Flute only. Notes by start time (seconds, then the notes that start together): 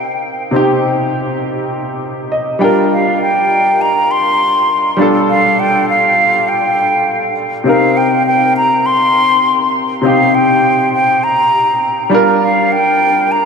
Already playing: G5
2.92 F5
3.22 G5
3.81 A#5
4.11 C6
5.30 F5
5.60 G5
5.89 F5
6.48 G5
7.68 F5
7.97 G5
8.27 G5
8.57 A#5
8.86 C6
10.05 F5
10.35 G5
10.94 G5
11.24 A#5
12.43 F5
12.72 G5
13.32 A#5